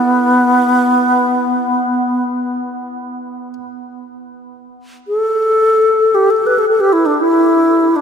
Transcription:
0.00 2.24 B3 medium
0.00 6.36 A4 soft
0.00 6.38 D5 soft
0.00 3.53 E5 soft
5.08 6.16 A4 medium
6.14 6.32 G4 medium
6.30 6.48 A4 medium
6.46 6.60 B4 medium
6.58 6.68 A4 medium
6.69 6.82 A4 medium
6.80 6.94 G4 medium
6.93 7.07 E4 medium
7.06 7.22 D4 medium
7.21 7.97 E4 medium
7.96 8.01 D4 medium

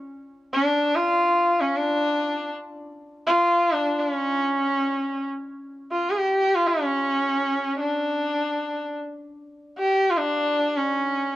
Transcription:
0.53 0.64 C#4 medium
0.64 0.97 D4 medium
0.95 1.62 F4 medium
1.60 1.78 C#4 medium
1.76 2.53 D4 medium
3.27 3.74 F4 medium
3.72 3.99 D4 medium
3.99 4.11 D4 medium
4.11 5.25 C#4 medium
5.91 6.11 F4 medium
6.10 6.19 G#4 medium
6.17 6.56 G4 medium
6.54 6.69 F4 medium
6.68 7.80 C#4 medium
7.81 8.94 D4 medium
9.79 10.11 G4 medium
10.10 10.20 F4 medium
10.19 10.78 D4 medium
10.77 11.36 C#4 medium

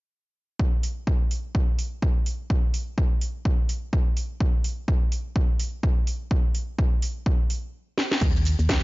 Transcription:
0.60 kick loud
0.83 open hi-hat loud
1.07 kick loud
1.31 open hi-hat loud
1.55 kick loud
1.79 open hi-hat loud
2.02 kick loud
2.26 open hi-hat loud
2.50 kick loud
2.74 open hi-hat loud
2.98 kick loud
3.21 open hi-hat loud
3.45 kick loud
3.69 open hi-hat loud
3.93 kick loud
4.17 open hi-hat loud
4.40 kick loud
4.64 open hi-hat loud
4.88 kick loud
5.12 open hi-hat loud
5.36 kick loud
5.59 open hi-hat loud
5.83 kick loud
6.07 open hi-hat loud
6.31 kick loud
6.55 open hi-hat loud
6.79 kick loud
7.02 open hi-hat loud
7.26 kick loud
7.50 open hi-hat loud
7.98 snare medium
8.12 snare medium
8.21 8.55 D#2 loud
8.21 kick loud
8.21 closed hi-hat medium
8.21 crash loud
8.21 shaker soft
8.36 shaker soft
8.45 open hi-hat loud
8.45 shaker medium
8.59 8.83 D#2 loud
8.59 closed hi-hat medium
8.59 shaker soft
8.69 kick loud
8.69 snare loud
8.69 closed hi-hat medium
8.69 shaker soft

